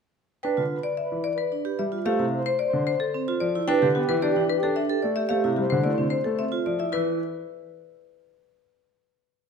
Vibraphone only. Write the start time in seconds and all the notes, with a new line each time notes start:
0.44 B4
0.57 F4
1.52 D4
1.65 G4
1.92 F4
2.06 G4
2.19 E4
3.14 C4
3.28 F4
3.55 E4
3.69 B4
3.82 G4
4.22 G4
4.36 D4
4.76 D4
4.89 A4
5.17 G4
5.30 G4
5.44 E4
5.84 E4
5.98 C4
6.39 C4
6.52 F4
6.79 E4
6.92 E4